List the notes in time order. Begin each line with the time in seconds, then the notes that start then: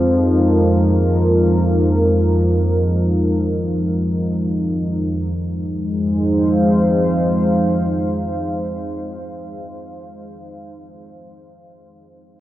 Already playing: F2 F3 G#3 D#4 A#4 F5
5.33 F2 F3 G#3
5.49 D#4
5.64 C5
5.82 F5